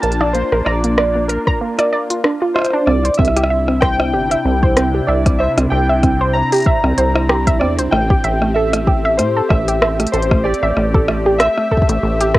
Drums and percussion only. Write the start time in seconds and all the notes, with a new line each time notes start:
0.03 closed hi-hat
0.12 closed hi-hat
0.21 cross-stick
0.35 closed hi-hat
0.52 cross-stick
0.66 cross-stick
0.84 closed hi-hat
0.98 cross-stick
1.29 closed hi-hat
1.47 kick, cross-stick
1.79 cross-stick, closed hi-hat
2.10 closed hi-hat
2.24 cross-stick
2.56 cross-stick
2.59 cross-stick
2.62 cross-stick
2.65 cross-stick, closed hi-hat
2.66 cross-stick
2.70 cross-stick
2.87 cross-stick
3.05 closed hi-hat
3.14 closed hi-hat
3.19 kick, cross-stick
3.25 cross-stick, closed hi-hat
3.37 cross-stick, closed hi-hat
3.43 cross-stick
3.68 cross-stick
3.82 kick, cross-stick, closed hi-hat
4.00 cross-stick
4.31 closed hi-hat
4.63 kick
4.77 cross-stick, closed hi-hat
5.26 kick, cross-stick, closed hi-hat
5.58 cross-stick, closed hi-hat
6.03 kick, cross-stick, closed hi-hat
6.52 closed hi-hat
6.54 closed hi-hat
6.56 closed hi-hat
6.58 closed hi-hat
6.60 closed hi-hat
6.62 closed hi-hat
6.64 kick, closed hi-hat
6.84 cross-stick
6.98 closed hi-hat
7.15 cross-stick
7.29 cross-stick
7.47 kick, closed hi-hat
7.61 cross-stick
7.79 closed hi-hat
7.92 cross-stick
8.10 kick
8.24 closed hi-hat
8.42 cross-stick
8.73 cross-stick, closed hi-hat
8.87 kick
9.19 cross-stick, closed hi-hat
9.50 kick, cross-stick
9.68 closed hi-hat
9.82 cross-stick
10.00 cross-stick, closed hi-hat
10.07 closed hi-hat
10.14 closed hi-hat
10.22 closed hi-hat
10.31 kick, cross-stick
10.54 closed hi-hat
10.77 cross-stick
10.94 kick
11.08 cross-stick
11.40 cross-stick, closed hi-hat
11.58 cross-stick
11.71 kick
11.77 kick
11.82 kick
11.89 closed hi-hat
12.21 closed hi-hat
12.35 kick, cross-stick